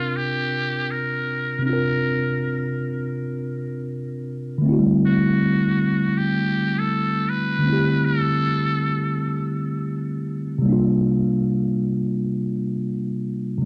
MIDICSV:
0, 0, Header, 1, 3, 480
1, 0, Start_track
1, 0, Tempo, 500000
1, 13106, End_track
2, 0, Start_track
2, 0, Title_t, "Muted trumpet"
2, 0, Program_c, 0, 59
2, 0, Note_on_c, 0, 65, 90
2, 156, Note_on_c, 0, 67, 99
2, 170, Note_off_c, 0, 65, 0
2, 872, Note_on_c, 0, 70, 90
2, 887, Note_off_c, 0, 67, 0
2, 1586, Note_off_c, 0, 70, 0
2, 1592, Note_on_c, 0, 70, 98
2, 2631, Note_off_c, 0, 70, 0
2, 4849, Note_on_c, 0, 66, 93
2, 5928, Note_on_c, 0, 67, 100
2, 5943, Note_off_c, 0, 66, 0
2, 6517, Note_on_c, 0, 69, 95
2, 6531, Note_off_c, 0, 67, 0
2, 7003, Note_on_c, 0, 71, 107
2, 7018, Note_off_c, 0, 69, 0
2, 7732, Note_on_c, 0, 69, 102
2, 7747, Note_off_c, 0, 71, 0
2, 9159, Note_off_c, 0, 69, 0
2, 13106, End_track
3, 0, Start_track
3, 0, Title_t, "Tine electric piano"
3, 0, Program_c, 1, 4
3, 0, Control_c, 1, 64, 127
3, 0, Note_on_c, 1, 48, 74
3, 0, Note_on_c, 1, 60, 65
3, 0, Note_on_c, 1, 62, 73
3, 0, Note_on_c, 1, 65, 68
3, 0, Note_on_c, 1, 70, 73
3, 1513, Note_off_c, 1, 48, 0
3, 1524, Note_on_c, 1, 48, 59
3, 1533, Note_off_c, 1, 60, 0
3, 1550, Note_off_c, 1, 62, 0
3, 1559, Note_on_c, 1, 60, 54
3, 1567, Note_off_c, 1, 65, 0
3, 1585, Note_off_c, 1, 70, 0
3, 1593, Note_on_c, 1, 62, 51
3, 1627, Note_on_c, 1, 65, 60
3, 1661, Note_on_c, 1, 70, 65
3, 4397, Note_off_c, 1, 48, 0
3, 4398, Note_on_c, 1, 50, 72
3, 4414, Note_off_c, 1, 60, 0
3, 4431, Note_off_c, 1, 62, 0
3, 4433, Note_on_c, 1, 57, 69
3, 4448, Note_off_c, 1, 65, 0
3, 4465, Note_off_c, 1, 70, 0
3, 4466, Note_on_c, 1, 60, 67
3, 4479, Control_c, 1, 64, 0
3, 4500, Note_on_c, 1, 64, 72
3, 4535, Note_on_c, 1, 66, 69
3, 4580, Note_off_c, 1, 66, 0
3, 4598, Note_on_c, 1, 55, 81
3, 4621, Control_c, 1, 64, 127
3, 7271, Note_off_c, 1, 50, 0
3, 7282, Note_on_c, 1, 50, 63
3, 7291, Note_off_c, 1, 57, 0
3, 7308, Note_off_c, 1, 60, 0
3, 7317, Note_on_c, 1, 57, 52
3, 7325, Note_off_c, 1, 64, 0
3, 7351, Note_on_c, 1, 60, 53
3, 7373, Note_off_c, 1, 55, 0
3, 7386, Note_on_c, 1, 64, 53
3, 7418, Note_on_c, 1, 67, 65
3, 10156, Note_off_c, 1, 50, 0
3, 10160, Note_on_c, 1, 48, 77
3, 10173, Note_off_c, 1, 57, 0
3, 10190, Note_off_c, 1, 60, 0
3, 10194, Note_on_c, 1, 55, 73
3, 10207, Note_off_c, 1, 64, 0
3, 10223, Note_off_c, 1, 67, 0
3, 10229, Note_on_c, 1, 58, 69
3, 10239, Control_c, 1, 64, 0
3, 10263, Note_on_c, 1, 62, 64
3, 10296, Note_on_c, 1, 65, 78
3, 10413, Control_c, 1, 64, 127
3, 13025, Note_off_c, 1, 48, 0
3, 13037, Note_on_c, 1, 48, 75
3, 13051, Note_off_c, 1, 55, 0
3, 13069, Note_off_c, 1, 58, 0
3, 13074, Note_on_c, 1, 55, 72
3, 13086, Note_off_c, 1, 62, 0
3, 13102, Note_off_c, 1, 65, 0
3, 13106, Note_off_c, 1, 48, 0
3, 13106, Note_off_c, 1, 55, 0
3, 13106, End_track
0, 0, End_of_file